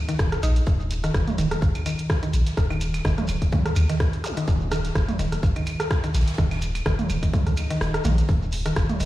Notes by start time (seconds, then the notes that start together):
0.09 D#3, snare, closed hi-hat, shekere
0.19 D#1, kick, cross-stick, snare, closed hi-hat, shekere
0.32 cross-stick, closed hi-hat, shekere
0.43 A#1 D#4, closed hi-hat, shekere
0.56 closed hi-hat, shekere
0.66 D#1, kick, closed hi-hat, shekere
0.80 shekere
0.91 closed hi-hat, shekere
1.03 D#3, cross-stick, snare, closed hi-hat, shekere
1.14 F#1, kick, cross-stick, snare, closed hi-hat, shekere
1.27 closed hi-hat, mid tom, shekere
1.38 D#1 D#3, closed hi-hat, shekere
1.51 cross-stick, closed hi-hat, shekere
1.62 G#1, kick, closed hi-hat, shekere
1.75 closed hi-hat, claves, shekere
1.86 D#3, closed hi-hat, claves, shekere
1.98 closed hi-hat, shekere
2.10 kick, cross-stick, snare, closed hi-hat, shekere
2.23 D#3, closed hi-hat, shekere
2.33 A#1, closed hi-hat, shekere
2.46 snare, closed hi-hat, shekere
2.57 D#1, kick, cross-stick, closed hi-hat, shekere
2.70 D#3, closed hi-hat, claves, shekere
2.81 closed hi-hat, shekere
2.94 snare, closed hi-hat, claves, shekere
3.05 F#1 D#3, kick, cross-stick, snare, closed hi-hat, shekere
3.18 cross-stick, closed hi-hat, mid tom, shekere
3.28 D#1, closed hi-hat, claves, shekere
3.42 kick, closed hi-hat, shekere
3.52 D#3, kick, closed hi-hat, mid tom, shekere
3.66 cross-stick, closed hi-hat, shekere
3.76 D#2, closed hi-hat, claves, shekere
3.89 D#3, snare, closed hi-hat, shekere
4.00 kick, cross-stick, snare, closed hi-hat, shekere
4.13 closed hi-hat, shekere
4.24 cross-stick, closed hi-hat, zap, shekere
4.37 D#3, closed hi-hat, shekere
4.47 D#1, kick, closed hi-hat, shekere
4.61 shekere
4.71 D#3, cross-stick, closed hi-hat, shekere
4.85 snare, closed hi-hat, shekere
4.95 F#1, kick, cross-stick, snare, closed hi-hat, shekere
5.08 closed hi-hat, mid tom, shekere
5.19 D#1 D#3, closed hi-hat, shekere
5.32 cross-stick, closed hi-hat, shekere
5.43 G#1, kick, closed hi-hat, shekere
5.55 D#3, closed hi-hat, claves, shekere
5.66 closed hi-hat, claves, shekere
5.80 cross-stick, closed hi-hat, shekere
5.90 kick, cross-stick, snare, closed hi-hat, shekere
6.04 D#3, closed hi-hat, shekere
6.14 A#1, snare, closed hi-hat, shekere
6.20 snare, closed hi-hat
6.28 snare, closed hi-hat, shekere
6.33 snare, closed hi-hat
6.38 D#1 D#3, kick, cross-stick, closed hi-hat, shekere
6.51 snare, closed hi-hat, claves, shekere
6.62 closed hi-hat, shekere
6.75 closed hi-hat, claves, shekere
6.85 F#1 D#3, kick, cross-stick, snare, closed hi-hat, shekere
6.99 closed hi-hat, mid tom, shekere
7.10 D#1, closed hi-hat, claves, shekere
7.23 D#3, kick, closed hi-hat, shekere
7.33 kick, closed hi-hat, mid tom, swell, shekere
7.47 C#2, cross-stick, closed hi-hat, shekere
7.57 closed hi-hat, claves, shekere
7.70 D#3, snare, closed hi-hat, shekere
7.81 D#1, cross-stick, snare, closed hi-hat, shekere
7.94 cross-stick, closed hi-hat, shekere
8.04 A#1 D#3, closed hi-hat, mid tom, shekere
8.18 closed hi-hat, shekere
8.29 D#1, kick, closed hi-hat, shekere
8.42 shekere
8.52 closed hi-hat, open hi-hat, shekere
8.66 D#3, cross-stick, snare, closed hi-hat, shekere
8.76 F#1, kick, cross-stick, snare, closed hi-hat, shekere
8.89 closed hi-hat, mid tom, shekere
9.00 D#1 D#3, closed hi-hat, open hi-hat, shekere